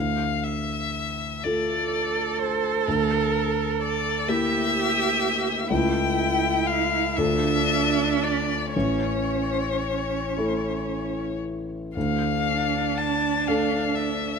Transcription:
Already playing: grand piano D2, violin F5
0.44 violin E5
1.44 grand piano A3 F4 A4, cello A4, violin D5
2.41 violin C5
2.87 grand piano D2, violin A#4
3.82 violin D5
4.28 grand piano A#3 E4 G4, cello G4, violin E5
5.70 grand piano C#2 A3 E4 A4, cello E4, violin G5
6.67 violin F5
7.17 grand piano D2 A3 F4 A4, cello D4, violin E5
8.23 violin D5
8.73 grand piano A1, cello C#4, violin C#5
10.37 grand piano A3 E4 A4
11.96 grand piano D2, cello D4, violin F5
12.98 violin A5
13.48 grand piano A3 D4 A4, violin F5
13.95 violin E5

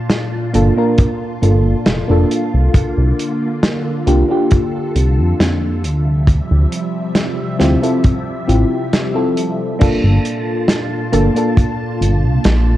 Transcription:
Already playing: string machine A#2 F4 A5, fm electric piano A#3 D4 F4 A4
0.10 snare, closed hi-hat
0.53 analog synth bass G1, fm electric piano A#3 D4 F4 A4, closed hi-hat
0.76 fm electric piano A#3 D4 F4 A#4
0.98 kick, closed hi-hat
1.42 analog synth bass G1, fm electric piano A#3 D4 F4 A4, closed hi-hat
1.86 analog synth bass F1, snare, closed hi-hat
2.08 analog synth bass F1, fm electric piano A#3 D4 F4 A4
2.31 string machine D3 A#3, closed hi-hat
2.54 analog synth bass C2
2.74 analog synth bass C2, kick, closed hi-hat
2.98 analog synth bass C2
3.19 closed hi-hat
3.63 snare, closed hi-hat
4.06 analog synth bass C2, fm electric piano A#3 D4 F4 G4, string machine A4, closed hi-hat
4.28 fm electric piano A#3 D4 F4 G4
4.51 kick, closed hi-hat
4.96 analog synth bass C2, closed hi-hat
5.19 analog synth bass F2
5.40 analog synth bass F2, snare, closed hi-hat
5.84 analog synth bass D2, string machine C3 F3 G3 E5, closed hi-hat
6.27 kick, closed hi-hat
6.51 analog synth bass D2
6.72 closed hi-hat
7.15 snare, closed hi-hat
7.59 analog synth bass D2, fm electric piano C4 E4 F4 G4, snare, closed hi-hat
7.82 fm electric piano C4 E4 F4 A4, closed hi-hat
8.04 kick, closed hi-hat
8.47 analog synth bass A1, fm electric piano C4 E4 F4 G4, closed hi-hat
8.93 snare, closed hi-hat
9.14 fm electric piano C4 E4 F4 A4
9.37 closed hi-hat
9.79 analog synth bass G1, string machine A#2 F4 A5, fm electric piano A#3 D4 F4 A4, kick, closed hi-hat, crash
10.04 analog synth bass G1
10.25 closed hi-hat
10.68 snare, closed hi-hat
11.12 analog synth bass G1, fm electric piano A#3 D4 F4 A4, closed hi-hat
11.35 fm electric piano A#3 D4 F4 A4, closed hi-hat
11.57 kick, closed hi-hat
12.01 analog synth bass G1, closed hi-hat
12.24 analog synth bass C2
12.44 analog synth bass A#1, snare, closed hi-hat

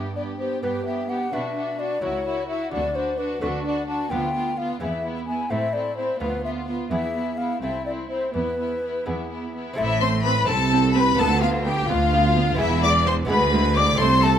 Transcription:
Already playing: cello section G2, lute G2, viola section B3, violin section G4 B4
0.15 viola section B3, violin section G4 B4, flute D5
0.39 viola section B3, violin section G4 B4, flute C5
0.62 lute G2 B3 G4 B4, cello section G2, viola section B3, violin section G4 B4, flute B4
0.85 viola section B3, violin section G4 B4, flute E5
1.08 viola section B3, violin section G4 B4, flute F#5
1.32 lute B2 D4 F#4 B4, cello section B2, viola section D4, violin section F#4 B4, flute E5
1.55 viola section D4, violin section F#4 B4
1.78 viola section D4, violin section F#4 B4, flute D5
2.01 cello section C#2, lute E4 F#4 A#4, viola section E4, violin section F#4 A#4, flute C#5
2.25 viola section E4, violin section F#4 A#4
2.48 viola section E4, violin section F#4 A#4, flute E5
2.71 lute D2, cello section D2, viola section D4, violin section F#4 B4, flute D5
2.94 viola section D4, violin section F#4 B4, flute C5
3.17 viola section D4, violin section F#4 B4, flute B4
3.41 lute D2 D4 F#4 B4, cello section D2, viola section D4, violin section F#4 B4, flute A4
3.64 viola section D4, violin section F#4 B4, flute D5
3.87 viola section D4, violin section F#4 B4, flute A5
4.10 lute D2 B3 F4 B4, cello section D2, viola section B3, violin section F4 B4, flute G5
4.34 viola section B3, violin section F4 B4
4.57 viola section B3, violin section F4 B4, flute F5
4.80 lute E2 B3 E4 G#4, cello section E2, viola section B3, violin section E4 G#4, flute E5
5.03 viola section B3, violin section E4 G#4
5.27 viola section B3, violin section E4 G#4, flute G#5
5.50 lute A2 C4 E4 A4, cello section A2, viola section C4, violin section E4 A4, flute E5
5.73 viola section C4, violin section E4 A4, flute D5
5.97 viola section C4, violin section E4 A4, flute C5
6.20 lute D2 B3 F4 B4, cello section D2, viola section B3, violin section F4 B4, flute B4
6.44 viola section B3, violin section F4 B4, flute E5
6.67 viola section B3, violin section F4 B4
6.90 lute E2 B3 E4 G#4, cello section E2, viola section B3, violin section E4 G#4, flute E5
7.14 viola section B3, violin section E4 G#4
7.37 viola section B3, violin section E4 G#4, flute F5
7.61 cello section C2, viola section C4, lute C4 E4 A4, violin section E4 A4, flute E5
7.85 viola section C4, violin section E4 A4, flute D5
8.09 viola section C4, violin section E4 A4, flute C5
8.33 lute E2, cello section E2, viola section B3, violin section E4 G#4, flute B4
8.57 viola section B3, violin section E4 G#4
8.81 viola section B3, violin section E4 G#4
9.05 lute E2 B3 E4 G#4, cello section E2, viola section B3, violin section E4 G#4
9.29 viola section B3, violin section E4 G#4
9.54 viola section B3, violin section E4 G#4
9.73 lute C4 E4 A4, flute E5, violin section E5
9.78 double bass section A1, lute A2, cello section A2, viola section C4, violin section E4
10.01 viola section C4, violin section C5 C6, flute C6
10.25 viola section C4, violin section B4 B5, flute B5
10.45 lute C4 E4 A4, viola section C4, violin section A4 A5
10.49 cello section C2, double bass section C2, flute A5
10.72 viola section C4
10.95 viola section C4, violin section B4 B5, flute B5
11.15 cello section D2, lute B3 F4 B4, viola section B3, violin section A5
11.19 double bass section D2, lute D2, violin section A4, flute A5
11.41 viola section B3, violin section F4 F5, flute F5
11.65 viola section B3, violin section G4 G5, flute G5
11.89 lute D2, cello section D2, double bass section D2, viola section B3, violin section F4 F5, flute F5
12.13 viola section B3
12.36 viola section B3
12.55 lute B3 E4 G#4
12.59 double bass section E1, lute E2, cello section E2, viola section G#3, violin section E4 E5, flute E5
12.83 viola section G#3, violin section D5 D6, flute D6
13.06 viola section G#3, violin section C5 C6, flute C6
13.25 lute B3 E4 G#4
13.29 lute D2, cello section D2, double bass section D2, viola section G#3, violin section B4 B5, flute B5
13.53 viola section G#3
13.77 viola section G#3, violin section D5 D6, flute D6
13.95 lute C4 E4 A4
14.00 double bass section C2, cello section C2, viola section A3, violin section C5 C6, flute C6
14.23 viola section A3, violin section A4 A5, flute A5

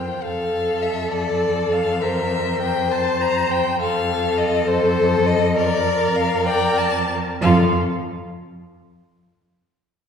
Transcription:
Already playing: cello F2, violin C5 G5
0.08 viola F4
0.23 cello F2, viola A4, violin A4 F5
0.83 violin E5
1.12 viola A4, violin D5
1.73 violin F5
2.02 viola A#4, violin C5 E5
2.61 violin G5
2.91 viola C5, violin A5
3.21 violin A#5
3.51 violin G5
3.79 cello F2, viola A4, violin A4 F5
4.38 violin D#5
4.68 violin A4 C5
5.26 violin D#5
5.55 viola A#4, violin A#4 D5
6.16 violin F5
6.46 viola A#4, violin D5 G5
6.78 violin A5
7.42 cello F2, viola F4, violin A4 F5

